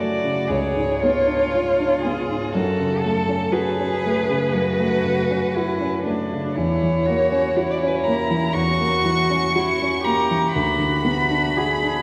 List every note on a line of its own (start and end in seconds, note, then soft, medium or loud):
0.00 0.46 F#2 soft
0.00 0.24 C#3 soft
0.00 0.53 A3 soft
0.00 0.53 C#4 soft
0.00 0.50 F#4 soft
0.00 0.53 F#4 soft
0.00 0.52 D5 medium
0.24 0.50 C#3 soft
0.48 2.50 C#2 soft
0.48 1.02 G#4 soft
0.48 2.02 C#5 medium
0.76 1.17 G#2 soft
1.01 1.43 B3 soft
1.01 2.51 F4 medium
1.27 1.68 D4 soft
1.54 1.94 F4 soft
1.79 2.20 D4 soft
2.02 2.45 B3 soft
2.02 2.55 G#4 soft
2.29 2.54 G#2 soft
2.51 4.50 F#2 soft
2.51 3.03 F#4 soft
2.51 3.53 A4 medium
2.79 3.18 C#3 soft
3.02 3.44 A3 soft
3.02 3.53 A4 soft
3.29 3.68 C#4 soft
3.52 3.93 F#4 soft
3.52 4.55 G#4 soft
3.52 6.03 B4 medium
3.80 4.19 C#4 soft
4.06 4.45 A3 soft
4.30 4.69 C#3 soft
4.53 6.51 F#2 soft
4.53 5.56 F#4 medium
4.80 5.19 A3 soft
5.05 5.44 C#3 soft
5.30 5.69 C#4 soft
5.54 6.03 E4 medium
5.54 5.95 F#4 soft
5.81 6.20 C#4 soft
6.04 6.45 A3 soft
6.04 6.57 D4 soft
6.32 6.56 C#3 soft
6.54 8.52 E2 soft
6.54 7.08 E4 soft
6.54 7.72 C#5 medium
6.83 7.22 E3 soft
7.06 7.47 A#3 soft
7.06 7.58 F#4 soft
7.32 7.71 C#4 soft
7.57 8.56 E4 medium
7.57 7.96 F#4 soft
7.71 7.80 D5 medium
7.78 7.89 C#5 medium
7.83 8.21 C#4 soft
7.87 7.97 B4 soft
7.96 8.06 C#5 soft
8.04 8.46 A#3 soft
8.04 8.55 A#5 medium
8.31 8.70 E3 soft
8.53 10.49 E2 soft
8.53 9.55 F#4 medium
8.53 10.06 C#6 medium
8.80 9.20 A#3 soft
9.05 9.45 E3 soft
9.30 9.70 C#4 soft
9.55 10.03 E4 medium
9.55 9.95 F#4 soft
9.82 10.20 C#4 soft
10.04 10.44 A#3 soft
10.04 10.55 G4 soft
10.04 10.52 A#5 medium
10.31 10.54 E3 soft
10.53 12.02 D2 soft
10.53 11.04 F#4 soft
10.53 12.02 B5 medium
10.79 11.20 D3 soft
11.04 11.46 B3 soft
11.04 11.59 F#4 medium
11.30 11.72 D4 soft
11.57 11.99 F#4 soft
11.57 12.02 G#4 medium
11.83 12.02 D4 soft